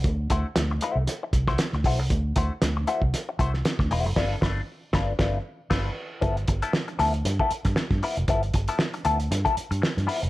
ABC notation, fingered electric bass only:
X:1
M:4/4
L:1/16
Q:"Swing 16ths" 1/4=116
K:G
V:1 name="Fingered electric bass" clef=bass
D,,2 D,, z D,,2 z C,, z2 C,,2 z D,, B,,, C,, | D,,2 D,, z D,,2 z C,, z2 C,,2 z D,, E,,, F,,, | G,,,2 G,,,2 z2 G,,,2 G,,,2 z2 G,,,2 z2 | G,,,2 G,,, z3 D,,2 G,, z2 G,, z G,, z =F,,, |
G,,,2 G,,, z3 D,,2 G,, z2 G,, z G,, z =F,,, |]